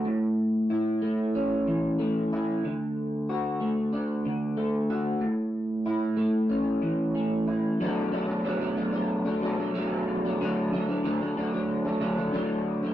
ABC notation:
X:1
M:4/4
L:1/16
Q:1/4=93
K:Bm
V:1 name="Clean electric guitar"
A,,4 E2 A,2 C2 E,2 A,2 E2 | D,4 F2 A,2 D2 D,2 A,2 F2 | A,,4 E2 A,2 C2 E,2 A,2 E2 | [B,,F,A,D]2 [B,,F,A,D] [F,A,D] [B,,F,A,D] [F,A,D] [B,,F,A,D] [F,A,D]2 [F,A,D] [B,,F,A,D] [F,A,D] [B,,F,A,D]3 [F,A,D] |
[D,F,A,D]2 [D,F,A,D] [F,A,D] [D,F,A,D] [F,A,D] [D,F,A,D] [F,A,D]2 [F,A,D] [D,F,A,D] [F,A,D] [D,F,A,D]3 [F,A,D] |]